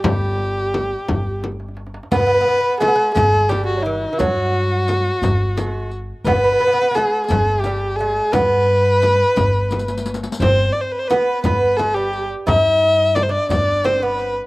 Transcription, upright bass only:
\new Staff \with { instrumentName = "Upright bass" } { \clef bass \time 6/8 \tempo 4. = 58 g,,4. g,,4. | g,,8 r4 g,,4. | g,4. g,,4. | g,,8 r4 g,,4. |
g,4. g,,4. | g,,8 r4 g,,4. | g,4. g,,4. | }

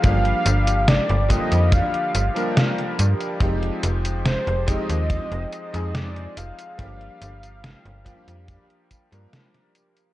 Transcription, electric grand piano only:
\new Staff \with { instrumentName = "Electric grand piano" } { \time 4/4 \key g \phrygian \tempo 4 = 71 <f g bes d' g'>4. <d f g bes g'>4~ <d f g bes g'>16 <f g bes d' bes'>4~ <f g bes d' bes'>16 | <f aes c' ees' g'>4. <f aes c' ees' g'>4~ <f aes c' ees' g'>16 <f aes c' ees' aes'>4~ <f aes c' ees' aes'>16 | <f g bes d' g'>4. <f g bes d' g'>4~ <f g bes d' g'>16 <f g bes d' bes'>4~ <f g bes d' bes'>16 | }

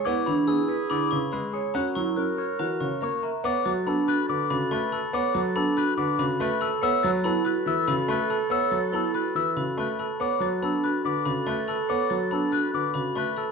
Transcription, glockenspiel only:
\new Staff \with { instrumentName = "Glockenspiel" } { \time 4/4 \key e \mixolydian \tempo 4 = 142 gis'''8 b''8 e'''8 r8 b''8 cis'''8 b''8 r8 | ais''8 cis'''8 fis'''8 r8 ais''8 cis'''8 ais''8 r8 | \key b \minor r8 a'''8 b''8 fis'''8 r8 b''8 cis'''8 b''8 | r8 a'''8 b''8 fis'''8 r8 b''8 cis'''8 b''8 |
r8 a'''8 b''8 fis'''8 r8 b''8 cis'''8 b''8 | r8 a'''8 b''8 fis'''8 r8 b''8 cis'''8 b''8 | r8 a'''8 b''8 fis'''8 r8 b''8 cis'''8 b''8 | r8 a'''8 b''8 fis'''8 r8 b''8 cis'''8 b''8 | }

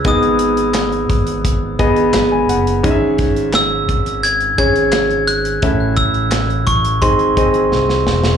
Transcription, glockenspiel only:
\new Staff \with { instrumentName = "Glockenspiel" } { \time 4/4 \key cis \minor \tempo 4 = 86 dis'''2. r4 | r4 e'''4 gis'''8 gis'''4 fis'''8~ | fis'''8 e'''4 cis'''8 bis''4. r8 | }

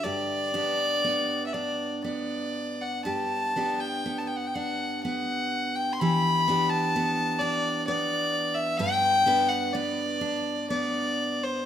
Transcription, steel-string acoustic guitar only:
\new Staff \with { instrumentName = "Steel-string acoustic guitar" } { \time 3/4 \key g \lydian \tempo 4 = 61 <g, g'>8 <b d' g'>8 b8 d'8 b4 | <g, g'>8 <b d' g'>8 b8 d'8 b4 | <e g'>8 <b d' g'>8 b8 d'8 b4 | <g, b'>8 <b d' b'>8 b8 d'8 b4 | }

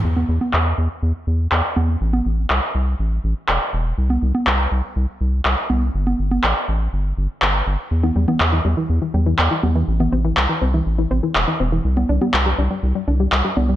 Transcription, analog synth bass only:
\new Staff \with { instrumentName = "Analog synth bass" } { \clef bass \time 4/4 \key a \dorian \tempo 4 = 122 e,8 e,8 e,8 e,8 e,8 e,8 e,8 e,8 | a,,8 a,,8 c,8 c,8 a,,8 a,,8 e,,8 e,,8 | c,8 c,8 c,8 c,8 c,8 c,8 c,8 c,8 | g,,8 g,,8 a,,8 a,,8 g,,8 g,,8 g,,8 g,,8 |
e,8 e,8 e,8 e,8 e,8 e,8 e,8 e,8 | a,,8 a,,8 c,8 c,8 a,,8 a,,8 e,,8 e,,8 | c,8 c,8 c,8 c,8 c,8 c,8 c,8 c,8 | }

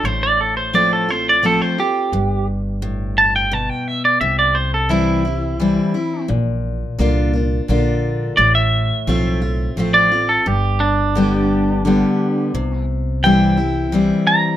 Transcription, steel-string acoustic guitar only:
\new Staff \with { instrumentName = "Steel-string acoustic guitar" } { \time 3/4 \key c \major \tempo 4 = 86 << { r4 <f a c' f'>8 <c' f'>8 <f a c' f'>8 <c' f'>8 | r2. | r4 <e g c' e'>8 <c' e'>8 <e g c' e'>8 <c' e'>8 | r4 <d bes d' f'>8 <d' f'>8 <d bes d' f'>4 |
r4 <f a c' f'>8 <c' f'>8 <f a c' f'>8 <c' f'>8 | r4 <d g b g'>4 <d g b g'>4 | r4 <e g c' e'>8 <c' e'>8 <e g c' e'>4 | } \\ { a,2 r4 | g,4 a,4 b,4 | c2 r4 | bes,2 r4 |
a,2 r4 | g,2 r4 | c2 r4 | } >> }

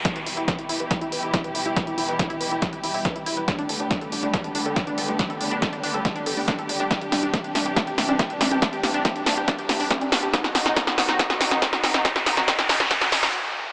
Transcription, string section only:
\new Staff \with { instrumentName = "String section" } { \clef bass \time 4/4 \key e \minor \tempo 4 = 140 << { g'1~ | g'1 | g'1~ | g'1~ |
g'1~ | g'1 | fis'1~ | fis'2. r4 | } \\ { <b, e g e'>1~ | <b, e g e'>1 | <d a b>1~ | <d a b>1 |
<c e d'>1~ | <c e d'>1 | <b, dis fis dis'>1~ | <b, dis fis dis'>2. r4 | } >> }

